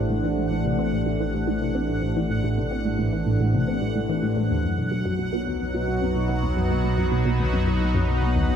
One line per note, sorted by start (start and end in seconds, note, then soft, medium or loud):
0.00 4.48 A1 medium
0.00 4.50 E3 medium
0.00 4.51 A3 medium
0.00 4.51 D4 medium
0.00 4.51 G4 medium
0.00 4.51 C5 medium
0.00 8.56 F#5 medium
0.10 0.19 A2 medium
0.24 0.29 E3 loud
0.37 0.50 A2 medium
0.51 0.64 A2 medium
0.65 0.74 C3 medium
0.79 0.92 C4 medium
0.93 1.02 A2 medium
1.06 1.15 A2 medium
1.20 1.26 E3 medium
1.34 1.46 A2 medium
1.47 1.61 A2 medium
1.61 1.70 C3 medium
1.75 1.88 C4 loud
1.89 1.98 A2 medium
2.02 2.12 A2 medium
2.16 2.22 E3 medium
2.30 2.43 A2 medium
2.44 2.57 A2 loud
2.58 2.67 C3 medium
2.71 2.84 C4 medium
2.85 2.94 A2 medium
2.99 3.08 A2 medium
3.13 3.18 E3 loud
3.26 3.39 A2 medium
3.40 3.53 A2 medium
3.54 3.63 C3 medium
3.68 3.81 C4 medium
3.82 3.91 A2 medium
3.95 4.05 A2 medium
4.09 4.15 E3 loud
4.23 4.35 A2 medium
4.37 4.50 A2 medium
4.50 8.56 B1 medium
4.50 4.59 D#2 medium
4.50 8.56 F#3 medium
4.64 4.77 F#2 medium
4.78 4.87 B2 medium
4.91 5.01 B2 medium
4.91 8.56 F#4 medium
5.00 8.56 B3 medium
5.05 5.11 F#2 loud
5.18 5.32 B2 medium
5.18 8.56 D#4 medium
5.33 5.46 B2 loud
5.47 5.56 D#2 medium
5.61 5.74 F#2 medium
5.70 8.56 B4 medium
5.74 5.84 B2 medium
5.88 5.97 B2 medium
6.02 6.07 F#2 medium
6.16 6.28 B2 medium
6.29 6.42 B2 loud
6.43 6.52 D#2 medium
6.57 6.70 F#2 medium
6.71 6.80 B2 medium
6.84 6.93 B2 medium
6.98 7.04 F#2 loud
7.12 7.24 B2 medium
7.26 7.39 B2 loud
7.39 7.49 D#2 medium
7.53 7.66 F#2 medium
7.67 7.76 B2 medium
7.81 7.90 B2 medium
7.94 8.00 F#2 loud
8.08 8.21 B2 medium
8.22 8.35 B2 medium
8.36 8.45 D#2 medium
8.49 8.56 F#2 medium